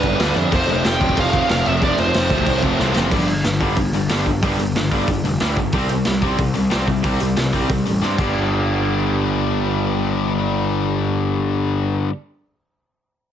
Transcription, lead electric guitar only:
0.00 0.33 B4 loud
0.54 0.87 C5 loud
0.87 1.19 G5 loud
1.20 1.50 F5 loud
1.51 1.67 F5 loud
1.67 1.83 E5 loud
1.84 1.98 D5 loud
2.00 2.60 C5 medium

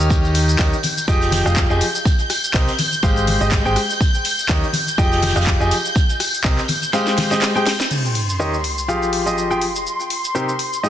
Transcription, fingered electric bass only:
0.00 0.57 D#2 medium
1.08 1.43 F1 medium
1.46 1.67 F1 medium
1.70 1.80 F1 medium
2.54 2.66 C2 loud
3.03 3.38 G#1 loud
3.41 3.62 G#1 medium
3.65 3.75 G#1 loud
4.49 4.61 D#2 loud
4.98 5.33 F1 medium
5.36 5.58 F1 loud
5.60 5.70 F1 medium
6.45 6.56 C2 loud

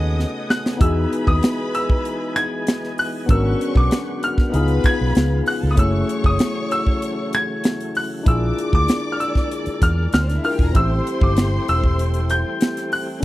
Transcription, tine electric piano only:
0.00 0.75 A3 medium
0.00 0.76 C#4 soft
0.00 0.77 D#4 medium
0.00 0.78 G#4 medium
0.77 3.23 B3 medium
0.77 3.24 D#4 medium
0.77 3.25 F#4 soft
0.83 3.26 G#4 medium
3.26 4.48 B3 medium
3.26 4.50 D4 medium
3.26 4.51 F#4 soft
3.32 4.52 A#4 medium
4.50 5.73 B3 medium
4.50 5.74 D#4 medium
4.54 4.60 E4 soft
4.54 5.76 G#4 medium
4.60 5.79 F4 medium
5.75 8.21 A3 medium
5.75 8.22 C#4 soft
5.75 8.23 E4 medium
5.80 8.24 G#4 medium
8.23 10.38 D4 medium
8.23 10.39 E4 medium
8.27 10.40 F4 medium
8.27 10.41 G#4 medium
10.42 10.74 D4 soft
10.42 10.73 E4 soft
10.42 10.75 F4 soft
10.42 10.76 A#4 medium
10.72 13.18 C4 medium
10.72 13.19 E4 soft
10.76 13.20 G4 medium
10.76 13.21 C5 medium
13.20 13.25 C#4 medium

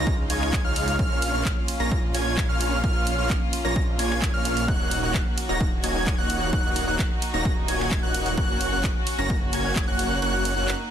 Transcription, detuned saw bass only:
0.00 0.28 C#2 loud
0.30 0.62 C#2 loud
0.65 0.97 C#2 loud
0.99 1.31 A#1 medium
1.34 1.50 A#1 loud
1.80 2.12 A#1 loud
2.14 2.47 A#1 medium
2.49 2.81 A#1 loud
2.84 3.16 A#1 loud
3.18 3.34 A#1 loud
3.64 3.97 A#1 loud
3.99 4.31 A#1 loud
4.34 4.66 A#1 loud
4.68 5.01 D#1 medium
5.03 5.19 D#1 loud
5.49 5.81 D#1 medium
5.84 6.16 D#1 loud
6.18 6.51 D#1 loud
6.53 6.85 D#1 loud
6.87 7.04 D#1 loud
7.34 7.66 D#1 loud
7.68 8.01 D#1 loud
8.03 8.35 D#1 loud
8.38 8.70 F#1 medium
8.72 8.88 F#1 loud
9.18 9.51 F#1 loud
9.53 9.85 F#1 loud
9.88 10.20 F#1 loud
10.22 10.54 F#1 loud
10.57 10.73 F#1 loud

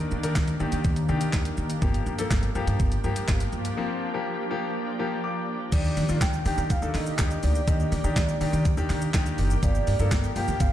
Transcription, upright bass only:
0.12 0.37 D#3 loud
0.36 0.52 D#2 loud
0.60 0.68 D#3 loud
0.73 0.80 D#3 medium
0.85 1.10 D#2 loud
1.09 1.25 D#3 medium
1.33 1.49 D#2 medium
1.58 1.73 D#3 loud
1.82 1.98 G1 loud
2.06 2.22 G2 loud
2.31 2.47 G1 loud
2.55 2.63 G2 loud
2.67 2.75 G2 medium
2.80 2.96 G1 loud
3.04 3.20 G2 medium
3.29 3.44 G1 medium
3.53 3.69 G2 medium
5.72 5.88 D#2 loud
5.97 6.05 D#3 loud
6.09 6.17 D#3 medium
6.21 6.37 D#2 loud
6.46 6.53 D#3 loud
6.58 6.66 D#3 loud
6.70 6.78 D#2 loud
6.82 6.90 D#2 medium
6.95 7.10 D#3 loud
7.19 7.35 D#2 medium
7.43 7.59 D2 loud
7.68 7.83 D#2 loud
7.92 8.00 D#3 loud
8.04 8.12 D#3 medium
8.16 8.32 D#2 loud
8.41 8.49 D#3 medium
8.53 8.61 D#3 medium
8.65 8.73 D#2 loud
8.77 8.85 D#2 medium
8.90 9.06 D#3 loud
9.14 9.30 D#2 medium
9.39 9.54 F#1 medium
9.63 9.79 G1 loud
9.87 9.95 G2 loud
9.99 10.07 G2 loud
10.11 10.27 G1 loud
10.36 10.44 G2 medium
10.48 10.56 G2 medium
10.60 10.68 G1 loud

